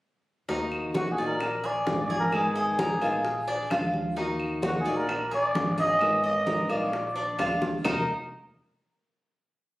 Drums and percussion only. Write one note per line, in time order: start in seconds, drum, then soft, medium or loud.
0.49 high bongo medium
0.49 high conga soft
0.71 high bongo soft
0.71 high conga soft
0.71 claves medium
0.94 high bongo medium
0.94 high conga medium
1.18 high bongo soft
1.18 high conga soft
1.40 high bongo medium
1.40 high conga soft
1.40 claves medium
1.64 high conga soft
1.87 high bongo medium
1.87 low bongo medium
1.87 high conga medium
2.10 high bongo soft
2.10 high conga medium
2.32 high bongo medium
2.32 high conga soft
2.32 claves medium
2.56 high conga soft
2.79 high bongo medium
2.79 high conga medium
3.02 high bongo soft
3.02 claves medium
3.25 high bongo medium
3.25 high conga soft
3.48 high bongo soft
3.48 high conga soft
3.70 high bongo medium
3.70 low bongo medium
3.70 high conga soft
3.70 claves medium
3.94 high bongo soft
3.94 high conga medium
4.17 high bongo medium
4.17 high conga soft
4.40 high bongo soft
4.40 high conga soft
4.40 claves medium
4.63 high bongo medium
4.63 high conga medium
4.86 high bongo soft
4.86 high conga soft
5.09 high bongo medium
5.09 high conga soft
5.09 claves medium
5.32 high conga soft
5.55 high bongo medium
5.55 low bongo medium
5.55 high conga medium
5.78 high bongo soft
5.78 high conga medium
6.01 high bongo medium
6.01 high conga soft
6.01 claves medium
6.24 high conga soft
6.47 high bongo medium
6.47 high conga medium
6.70 high bongo soft
6.70 claves medium
6.93 high bongo medium
6.93 high conga soft
7.16 high bongo soft
7.16 high conga soft
7.39 high bongo medium
7.39 low bongo medium
7.39 high conga soft
7.39 claves medium
7.62 high bongo medium
7.62 high conga medium
7.85 low bongo loud
7.85 low conga loud
7.85 claves loud